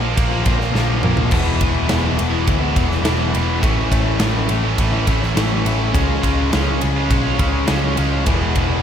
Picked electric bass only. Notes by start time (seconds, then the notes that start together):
Already playing: A#1
0.17 A#1
0.46 A#1
0.74 A#1
1.04 A#1
1.32 E1
1.61 E1
1.91 E1
2.20 E1
2.48 D2
2.77 E1
3.07 E1
3.35 E1
3.63 A1
3.92 A1
4.20 A1
4.50 A1
4.78 A1
5.07 A1
5.36 A1
5.65 A1
5.94 C#2
6.23 C#2
6.54 C#2
6.83 C#2
7.11 B1
7.39 C#2
7.69 C#2
7.98 C#2
8.27 E1
8.55 E1